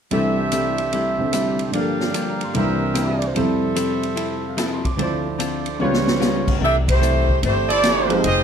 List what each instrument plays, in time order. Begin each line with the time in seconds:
0.11 grand piano C2 C3 E3 D4 A4, hollow-body jazz guitar C3 G3 A3 E4, trumpet section G4 A4 C5 E5, ride
0.52 hollow-body jazz guitar C3 G3 A3 E4, hi-hat pedal, ride
0.78 ride
0.92 hollow-body jazz guitar C3 G3 A3 E4, ride
1.18 grand piano C3 D3 C4 G4
1.33 hollow-body jazz guitar C3 G3 A3 E4, cross-stick, hi-hat pedal, ride
1.59 ride
1.70 grand piano G2 D3, hollow-body jazz guitar G2 F3, trumpet section G4 D5, ride
1.74 grand piano F3 A#3, hollow-body jazz guitar A#3 D4, trumpet section F5
1.81 grand piano A4
2.00 snare
2.14 hollow-body jazz guitar G2 F3 A#3 D4, trumpet section G5, hi-hat pedal, ride
2.28 trumpet section A#5
2.41 trumpet section C6, ride
2.54 grand piano C2 C3 E3 D4 A#4, hollow-body jazz guitar C3 G3 A#3 E4, trumpet section G4 A#4 C5 E5, ride
2.94 hollow-body jazz guitar C3 G3 A#3 E4, grand piano G5, cross-stick, hi-hat pedal, ride
3.08 grand piano E5
3.18 grand piano D5, ride
3.27 grand piano C5
3.35 grand piano F2 C3 G3 E4, hollow-body jazz guitar F3 C4 E4 A4, trumpet section A4 C5 E5, ride
3.39 grand piano A4
3.75 hollow-body jazz guitar F3 C4 E4 A4, hi-hat pedal, ride
4.03 ride
4.16 hollow-body jazz guitar F3 C4 E4 A4, ride
4.45 trumpet section F5
4.57 hollow-body jazz guitar F3 C4 E4 A4, trumpet section A5, cross-stick, snare, hi-hat pedal, ride
4.72 trumpet section C6
4.85 trumpet section D6, kick, ride
4.97 grand piano D2 D3 F3 E4, hollow-body jazz guitar D3 C4 F4 A4, trumpet section A4 C5 D5, ride
5.02 grand piano C5
5.39 hollow-body jazz guitar D3 C4 F4 A4, hi-hat pedal, ride
5.66 ride
5.79 grand piano C#2 C#3 G3 F4, hollow-body jazz guitar C#3 G3 B3 F4, trumpet section F4 G4 B4 C#5, high tom
5.84 grand piano B4
5.94 snare
6.08 snare
6.20 hollow-body jazz guitar C#3 G3 B3 F4, trumpet section D#5, snare, hi-hat pedal
6.41 trumpet section F5
6.48 kick, crash
6.60 upright bass C2, hollow-body jazz guitar C3 E3 A3 D4
6.65 saxophone section D4 G4 A4 E5
6.88 saxophone section A3 E4 G4 C5, kick, ride
7.01 hollow-body jazz guitar C3 E3 A3 D4, hi-hat pedal
7.29 kick
7.43 upright bass G1, hollow-body jazz guitar C3 E3 A3 D4, saxophone section A3 E4 G4 C5, ride
7.69 trumpet section E4 A4 C5 D5, ride
7.83 hollow-body jazz guitar C3 E3 A3 D4, saxophone section A3 E4 G4 D5, snare, hi-hat pedal, ride
8.09 grand piano F3 G#3 C4 D#4 G4, saxophone section G#3 D#4 G4 C5, ride
8.24 upright bass F1, hollow-body jazz guitar F3 G#3 D#4 G4, trumpet section F4 G4 G#4 D#5, ride